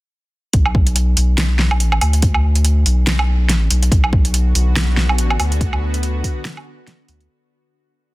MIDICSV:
0, 0, Header, 1, 4, 480
1, 0, Start_track
1, 0, Key_signature, 2, "minor"
1, 0, Tempo, 422535
1, 608, Time_signature, 4, 2, 24, 8
1, 9252, End_track
2, 0, Start_track
2, 0, Title_t, "Synth drone"
2, 0, Program_c, 0, 95
2, 4445, Note_on_c, 0, 50, 77
2, 4446, Note_on_c, 0, 59, 74
2, 4447, Note_on_c, 0, 66, 89
2, 8248, Note_off_c, 0, 50, 0
2, 8249, Note_off_c, 0, 59, 0
2, 8249, Note_off_c, 0, 66, 0
2, 9252, End_track
3, 0, Start_track
3, 0, Title_t, "Sub bass"
3, 0, Program_c, 1, 38
3, 608, Note_on_c, 1, 35, 100
3, 1312, Note_off_c, 1, 35, 0
3, 1328, Note_on_c, 1, 35, 99
3, 1999, Note_off_c, 1, 35, 0
3, 1999, Note_on_c, 1, 34, 99
3, 2272, Note_off_c, 1, 34, 0
3, 2289, Note_on_c, 1, 38, 99
3, 3232, Note_off_c, 1, 38, 0
3, 3248, Note_on_c, 1, 35, 100
3, 3918, Note_off_c, 1, 35, 0
3, 3918, Note_on_c, 1, 34, 100
3, 4191, Note_off_c, 1, 34, 0
3, 4209, Note_on_c, 1, 35, 97
3, 4432, Note_off_c, 1, 35, 0
3, 4449, Note_on_c, 1, 35, 98
3, 5152, Note_off_c, 1, 35, 0
3, 5169, Note_on_c, 1, 35, 97
3, 5839, Note_off_c, 1, 35, 0
3, 5839, Note_on_c, 1, 34, 97
3, 6112, Note_off_c, 1, 34, 0
3, 6130, Note_on_c, 1, 38, 99
3, 7073, Note_off_c, 1, 38, 0
3, 8047, Note_on_c, 1, 38, 97
3, 8271, Note_off_c, 1, 38, 0
3, 9252, End_track
4, 0, Start_track
4, 0, Title_t, "Drums"
4, 607, Note_on_c, 9, 42, 83
4, 609, Note_on_c, 9, 36, 122
4, 720, Note_off_c, 9, 42, 0
4, 722, Note_off_c, 9, 36, 0
4, 744, Note_on_c, 9, 77, 53
4, 849, Note_on_c, 9, 36, 103
4, 858, Note_off_c, 9, 77, 0
4, 963, Note_off_c, 9, 36, 0
4, 984, Note_on_c, 9, 42, 56
4, 1087, Note_off_c, 9, 42, 0
4, 1087, Note_on_c, 9, 42, 80
4, 1200, Note_off_c, 9, 42, 0
4, 1328, Note_on_c, 9, 46, 64
4, 1441, Note_off_c, 9, 46, 0
4, 1567, Note_on_c, 9, 38, 119
4, 1567, Note_on_c, 9, 42, 82
4, 1681, Note_off_c, 9, 38, 0
4, 1681, Note_off_c, 9, 42, 0
4, 1806, Note_on_c, 9, 38, 62
4, 1920, Note_off_c, 9, 38, 0
4, 1943, Note_on_c, 9, 77, 61
4, 2047, Note_on_c, 9, 42, 83
4, 2057, Note_off_c, 9, 77, 0
4, 2160, Note_off_c, 9, 42, 0
4, 2182, Note_on_c, 9, 77, 75
4, 2288, Note_off_c, 9, 77, 0
4, 2288, Note_on_c, 9, 46, 95
4, 2288, Note_on_c, 9, 77, 80
4, 2402, Note_off_c, 9, 46, 0
4, 2402, Note_off_c, 9, 77, 0
4, 2424, Note_on_c, 9, 42, 54
4, 2526, Note_off_c, 9, 42, 0
4, 2526, Note_on_c, 9, 42, 81
4, 2529, Note_on_c, 9, 36, 127
4, 2640, Note_off_c, 9, 42, 0
4, 2643, Note_off_c, 9, 36, 0
4, 2663, Note_on_c, 9, 77, 51
4, 2777, Note_off_c, 9, 77, 0
4, 2902, Note_on_c, 9, 42, 55
4, 3005, Note_off_c, 9, 42, 0
4, 3005, Note_on_c, 9, 42, 82
4, 3119, Note_off_c, 9, 42, 0
4, 3247, Note_on_c, 9, 46, 63
4, 3361, Note_off_c, 9, 46, 0
4, 3488, Note_on_c, 9, 38, 124
4, 3488, Note_on_c, 9, 42, 82
4, 3601, Note_off_c, 9, 38, 0
4, 3601, Note_off_c, 9, 42, 0
4, 3625, Note_on_c, 9, 77, 80
4, 3738, Note_off_c, 9, 77, 0
4, 3970, Note_on_c, 9, 38, 65
4, 3970, Note_on_c, 9, 42, 85
4, 4083, Note_off_c, 9, 38, 0
4, 4083, Note_off_c, 9, 42, 0
4, 4209, Note_on_c, 9, 46, 94
4, 4323, Note_off_c, 9, 46, 0
4, 4346, Note_on_c, 9, 42, 56
4, 4449, Note_on_c, 9, 36, 126
4, 4451, Note_off_c, 9, 42, 0
4, 4451, Note_on_c, 9, 42, 80
4, 4562, Note_off_c, 9, 36, 0
4, 4565, Note_off_c, 9, 42, 0
4, 4586, Note_on_c, 9, 77, 51
4, 4689, Note_on_c, 9, 36, 110
4, 4700, Note_off_c, 9, 77, 0
4, 4803, Note_off_c, 9, 36, 0
4, 4827, Note_on_c, 9, 42, 53
4, 4930, Note_off_c, 9, 42, 0
4, 4930, Note_on_c, 9, 42, 81
4, 5044, Note_off_c, 9, 42, 0
4, 5171, Note_on_c, 9, 46, 60
4, 5285, Note_off_c, 9, 46, 0
4, 5412, Note_on_c, 9, 38, 123
4, 5412, Note_on_c, 9, 42, 81
4, 5526, Note_off_c, 9, 38, 0
4, 5526, Note_off_c, 9, 42, 0
4, 5650, Note_on_c, 9, 38, 64
4, 5763, Note_off_c, 9, 38, 0
4, 5787, Note_on_c, 9, 77, 57
4, 5889, Note_on_c, 9, 42, 84
4, 5900, Note_off_c, 9, 77, 0
4, 6003, Note_off_c, 9, 42, 0
4, 6026, Note_on_c, 9, 77, 73
4, 6130, Note_off_c, 9, 77, 0
4, 6130, Note_on_c, 9, 46, 90
4, 6130, Note_on_c, 9, 77, 76
4, 6243, Note_off_c, 9, 46, 0
4, 6243, Note_off_c, 9, 77, 0
4, 6269, Note_on_c, 9, 42, 54
4, 6370, Note_on_c, 9, 36, 123
4, 6372, Note_off_c, 9, 42, 0
4, 6372, Note_on_c, 9, 42, 78
4, 6484, Note_off_c, 9, 36, 0
4, 6486, Note_off_c, 9, 42, 0
4, 6509, Note_on_c, 9, 77, 51
4, 6622, Note_off_c, 9, 77, 0
4, 6748, Note_on_c, 9, 42, 52
4, 6851, Note_off_c, 9, 42, 0
4, 6851, Note_on_c, 9, 42, 80
4, 6964, Note_off_c, 9, 42, 0
4, 7090, Note_on_c, 9, 36, 63
4, 7091, Note_on_c, 9, 46, 59
4, 7204, Note_off_c, 9, 36, 0
4, 7205, Note_off_c, 9, 46, 0
4, 7328, Note_on_c, 9, 38, 125
4, 7328, Note_on_c, 9, 42, 76
4, 7442, Note_off_c, 9, 38, 0
4, 7442, Note_off_c, 9, 42, 0
4, 7467, Note_on_c, 9, 77, 77
4, 7580, Note_off_c, 9, 77, 0
4, 7810, Note_on_c, 9, 38, 64
4, 7810, Note_on_c, 9, 42, 81
4, 7923, Note_off_c, 9, 38, 0
4, 7923, Note_off_c, 9, 42, 0
4, 8048, Note_on_c, 9, 46, 89
4, 8162, Note_off_c, 9, 46, 0
4, 8185, Note_on_c, 9, 42, 52
4, 8299, Note_off_c, 9, 42, 0
4, 9252, End_track
0, 0, End_of_file